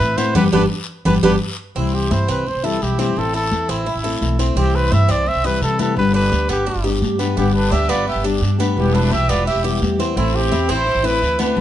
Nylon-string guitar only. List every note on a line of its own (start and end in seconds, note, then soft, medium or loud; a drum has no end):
0.00 0.17 E3 medium
0.00 0.17 A3 soft
0.00 0.17 C4 medium
0.00 0.16 E4 soft
0.17 0.35 A3 medium
0.17 0.35 C4 medium
0.17 0.34 E4 medium
0.35 0.47 G3 medium
0.35 0.47 B3 medium
0.35 0.47 D4 medium
0.53 0.65 G3 medium
0.53 0.65 B3 medium
0.53 0.65 D4 medium
1.06 1.17 G3 medium
1.06 1.17 B3 medium
1.06 1.17 D4 medium
1.24 1.35 G3 medium
1.24 1.35 B3 medium
1.24 1.35 D4 medium
1.75 2.45 C3 medium
1.75 2.46 E3 medium
1.75 2.46 G3 medium
1.75 2.47 C4 medium
1.75 2.47 E4 medium
2.46 muted nylon-string guitar stroke medium
2.63 2.80 E3 medium
2.63 2.80 G3 medium
2.63 2.81 C4 medium
2.63 2.80 E4 medium
2.81 2.98 E3 soft
2.81 2.98 G3 medium
2.81 2.98 C4 medium
2.81 2.98 E4 medium
2.99 3.14 E3 medium
2.99 3.16 G3 medium
2.99 3.16 C4 medium
2.99 3.16 E4 medium
3.16 3.86 E3 medium
3.16 3.85 A3 medium
3.16 3.86 C4 medium
3.16 3.87 E4 medium
3.86 muted nylon-string guitar stroke soft
4.04 4.21 A3 medium
4.04 4.21 C4 medium
4.04 4.21 E4 medium
4.21 4.38 E3 soft
4.21 4.39 A3 soft
4.21 4.39 C4 medium
4.21 4.38 E4 medium
4.39 4.57 A3 medium
4.39 4.56 C4 medium
4.39 4.56 E4 medium
4.56 5.25 C3 medium
4.56 5.26 E3 medium
4.56 5.27 G3 medium
4.56 5.26 C4 medium
4.56 5.26 E4 medium
5.26 muted nylon-string guitar stroke medium
5.44 5.61 E3 medium
5.44 5.61 G3 medium
5.44 5.62 C4 medium
5.44 5.61 E4 medium
5.62 5.79 E3 medium
5.62 5.79 G3 soft
5.62 5.79 C4 medium
5.62 5.78 E4 medium
5.79 5.97 E3 medium
5.79 5.96 G3 medium
5.79 5.96 C4 medium
5.79 5.96 E4 medium
5.96 6.66 D3 medium
5.96 6.67 G3 medium
5.96 6.67 B3 medium
5.96 6.67 D4 medium
5.96 6.67 G4 medium
6.67 muted nylon-string guitar stroke medium
6.84 7.00 G3 medium
6.84 7.01 B3 medium
6.84 7.01 D4 medium
6.84 7.01 G4 medium
7.01 7.19 G3 soft
7.01 7.19 B3 soft
7.01 7.18 D4 medium
7.01 7.18 G4 soft
7.19 7.36 G3 medium
7.19 7.36 B3 medium
7.19 7.36 D4 medium
7.19 7.36 G4 medium
7.36 8.06 D3 medium
7.36 8.07 G3 medium
7.36 8.07 B3 medium
7.36 8.07 D4 medium
7.36 8.08 G4 medium
8.07 muted nylon-string guitar stroke medium
8.24 8.41 G3 medium
8.24 8.41 B3 medium
8.24 8.42 D4 medium
8.24 8.41 G4 medium
8.42 8.59 G3 medium
8.42 8.59 B3 medium
8.42 8.59 D4 soft
8.42 8.57 G4 soft
8.59 8.77 G3 medium
8.59 8.77 B3 medium
8.59 8.76 D4 medium
8.59 8.76 G4 medium
8.77 9.45 B2 medium
8.77 9.46 E3 medium
8.77 9.45 G3 medium
8.77 9.46 B3 medium
8.77 9.47 E4 medium
9.46 muted nylon-string guitar stroke medium
9.64 9.80 E3 medium
9.64 9.81 G3 medium
9.64 9.81 B3 medium
9.64 9.81 E4 medium
9.82 9.99 E3 soft
9.82 9.99 G3 soft
9.82 9.99 B3 medium
9.82 9.98 E4 medium
9.99 10.15 E3 medium
9.99 10.17 G3 medium
9.99 10.16 B3 medium
9.99 10.16 E4 medium
10.16 10.85 E3 medium
10.16 10.86 A3 medium
10.16 10.86 C4 medium
10.16 10.86 E4 medium
10.87 muted nylon-string guitar stroke medium
11.03 11.21 A3 medium
11.03 11.21 C4 medium
11.03 11.21 E4 medium
11.22 11.39 E3 soft
11.22 11.39 A3 medium
11.22 11.39 C4 medium
11.22 11.38 E4 medium
11.39 11.57 A3 medium
11.39 11.57 C4 medium
11.39 11.56 E4 medium
11.56 11.61 D3 medium
11.56 11.61 G3 medium
11.56 11.61 B3 medium